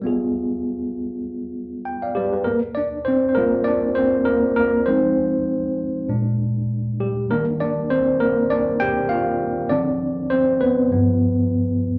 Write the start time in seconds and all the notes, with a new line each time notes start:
0.02 G3 B3 F4
0.07 G#4
1.85 G5
2.02 D5 F5
2.15 G3 G4 B4 D5
2.33 G#4 B4
2.44 A#3 A#4
2.75 D4 D5
3.05 C4 C5
3.29 C5
3.35 G3 A#3 F4 A#4
3.64 D4 D5
3.95 C4 C5
4.25 A#3 A#4
4.56 A#3 A#4
4.86 F3 G#3 C4 D#4 C5
6.09 A#2 G#3 D4
7.00 G3 G4
7.30 D#3 G3 A#3 D4 A#4
7.60 D4 D5
7.90 C4 C5
8.20 A#3 A#4
8.50 D4 D5
8.80 G4 G5
9.09 F4 F5
9.69 D3 F3 C4 D4 D5
10.30 C4 C5
10.61 B3 B4
10.91 G2 F3 B3